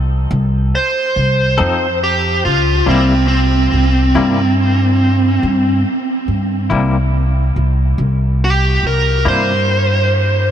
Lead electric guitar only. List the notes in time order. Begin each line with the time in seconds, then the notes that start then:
0.75 C5
2.03 G4
2.45 F4
2.88 C4
3.28 C4
8.44 G4
8.87 A#4
9.28 C5